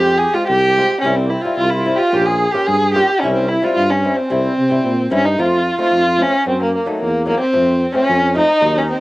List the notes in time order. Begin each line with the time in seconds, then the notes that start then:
Already playing: F2 G#3 C4 F4 G4
0.18 G#4
0.34 G#3 C4 F4
0.47 C2 G4
0.77 G#3 C4 F4
1.01 C2 G3 C4 C#4
1.05 E4
1.15 C4
1.23 A#3
1.30 C4 E4
1.42 G3 C4 E4 F4
1.56 C2 F4
1.70 E4
1.84 G3 C4 E4
1.95 F4 G4
2.00 F4
2.11 A#1 A#3 C#4 F4 G4
2.26 G#4
2.51 A#3 C#4 F4 G4
2.67 G2 G#4
2.90 G#4
2.94 A#3 C#4 F4 G4
3.20 C2 G3 C4 C#4 E4
3.34 C4
3.48 E4
3.62 G3 C4 E4 F4
3.75 G2 F4
3.90 C#4
4.03 G3 C4 E4
4.16 C4
4.26 C#4
4.30 C2 G3 C4 E4
4.59 C3
4.69 G3 C4 E4
4.84 A#2
5.10 G2 G3 C4 C#4 E4
5.14 C#4
5.25 D#4
5.38 F2 A3 C4 F4
5.78 A3 C4 D#4 F4
5.92 F2
6.17 A3 C4 F4
6.22 C#4
6.45 F#2 F#3 A#3 C4 C#4
6.62 A#3
6.75 A#3
6.86 F#3 A3 A#3 D#4
6.91 A3
7.01 E2 A#3
7.26 F#3 A#3 D#4
7.40 C4
7.53 F2 F3 A3 C4
7.93 F3 A3 C4 C#4
8.10 F2
8.35 F3 A3 C4 D#4
8.61 D#2 F#3 A#3 D#4
8.78 C#4
8.91 C4